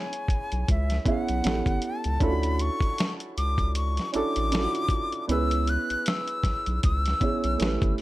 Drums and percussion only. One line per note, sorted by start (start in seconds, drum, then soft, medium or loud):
0.13 closed hi-hat medium
0.28 kick medium
0.28 closed hi-hat medium
0.52 closed hi-hat soft
0.68 kick medium
0.68 closed hi-hat medium
0.90 snare soft
0.90 closed hi-hat soft
1.06 kick loud
1.06 closed hi-hat medium
1.28 closed hi-hat soft
1.44 snare medium
1.44 closed hi-hat medium
1.66 kick medium
1.66 closed hi-hat soft
1.82 closed hi-hat medium
2.04 closed hi-hat soft
2.20 kick loud
2.20 closed hi-hat medium
2.43 closed hi-hat medium
2.59 closed hi-hat medium
2.81 kick medium
2.81 closed hi-hat soft
2.98 snare loud
2.98 closed hi-hat medium
3.20 closed hi-hat medium
3.38 closed hi-hat medium
3.58 kick medium
3.58 closed hi-hat soft
3.75 closed hi-hat medium
3.97 snare soft
3.97 closed hi-hat soft
4.14 closed hi-hat medium
4.36 closed hi-hat medium
4.52 snare loud
4.52 closed hi-hat medium
4.75 closed hi-hat soft
4.89 kick medium
4.89 closed hi-hat medium
5.12 closed hi-hat soft
5.29 closed hi-hat medium
5.51 closed hi-hat medium
5.67 closed hi-hat medium
5.90 closed hi-hat soft
6.06 snare loud
6.06 closed hi-hat loud
6.28 closed hi-hat soft
6.44 kick medium
6.44 snare soft
6.44 closed hi-hat medium
6.66 closed hi-hat soft
6.83 kick loud
6.83 closed hi-hat medium
7.06 snare soft
7.06 closed hi-hat medium
7.21 kick loud
7.21 closed hi-hat medium
7.44 closed hi-hat soft
7.60 snare loud
7.60 closed hi-hat medium
7.82 kick loud
7.82 closed hi-hat soft
7.98 open hi-hat soft